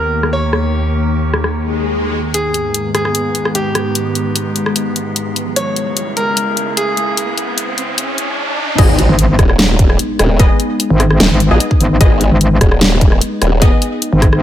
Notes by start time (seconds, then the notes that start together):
Already playing: D#2 D#3 A#3 G4 A#4
0.23 cross-stick
0.33 C#5
0.53 cross-stick
1.34 cross-stick
1.44 cross-stick
1.54 swell
2.34 G#2 D#3 G#3 B3 G#4, closed hi-hat, riser
2.54 closed hi-hat
2.74 closed hi-hat
2.95 G#4, cross-stick, closed hi-hat
3.05 cross-stick
3.15 closed hi-hat
3.35 closed hi-hat
3.45 cross-stick
3.55 G4, closed hi-hat
3.75 cross-stick, closed hi-hat
3.95 closed hi-hat
4.15 closed hi-hat
4.36 closed hi-hat
4.56 closed hi-hat
4.66 cross-stick
4.76 closed hi-hat
4.96 closed hi-hat
5.16 closed hi-hat
5.36 closed hi-hat
5.56 C#2 C#3 E4 C#5, closed hi-hat
5.76 closed hi-hat
5.97 closed hi-hat
6.17 A#4, closed hi-hat
6.37 closed hi-hat
6.57 closed hi-hat
6.77 G#4, closed hi-hat
6.97 closed hi-hat
7.17 closed hi-hat
7.38 closed hi-hat
7.58 closed hi-hat
7.78 closed hi-hat
7.98 closed hi-hat
8.18 closed hi-hat
8.78 G#1 G#3 B3 D#4 G#4 D#5, kick, closed hi-hat, crash, impact
8.99 closed hi-hat
9.09 G#1
9.19 closed hi-hat
9.39 D#1, kick, cross-stick, closed hi-hat
9.49 cross-stick
9.59 snare, closed hi-hat
9.79 kick, closed hi-hat
9.90 cross-stick
9.99 closed hi-hat
10.19 D#1, cross-stick, closed hi-hat
10.40 B3 G#4 D#5, kick, closed hi-hat
10.60 closed hi-hat
10.80 closed hi-hat
10.90 G#1
11.00 cross-stick, closed hi-hat
11.11 cross-stick
11.20 D#1, snare, closed hi-hat
11.31 G#1
11.40 closed hi-hat
11.51 A#1 B3 G#4 D#5
11.60 closed hi-hat
11.71 kick
11.80 G#1, closed hi-hat
12.01 G#1 B3 G#4 D#5, kick, closed hi-hat
12.21 closed hi-hat
12.31 G#1
12.41 closed hi-hat
12.61 D#1, kick, cross-stick, closed hi-hat
12.72 cross-stick
12.81 snare, closed hi-hat
13.01 kick, closed hi-hat
13.12 cross-stick
13.21 closed hi-hat
13.42 D#1, cross-stick, closed hi-hat
13.62 B3 G#4 D#5, kick, closed hi-hat
13.82 closed hi-hat
14.02 closed hi-hat
14.13 G#1
14.22 kick, cross-stick, closed hi-hat
14.33 cross-stick